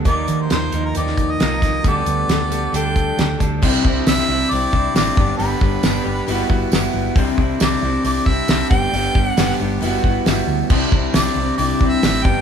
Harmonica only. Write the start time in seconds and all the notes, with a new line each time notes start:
0.07 D5
0.42 C5
0.52 C5
0.86 A#4
0.98 D5
1.32 D#5
1.88 D5
2.75 G5
4.07 E5
4.51 D5
4.96 D5
5.38 B4
7.62 D5
8.06 D5
8.26 E5
8.70 G5
9.27 F#5
11.15 D5
11.58 D5
11.90 E5
12.23 G5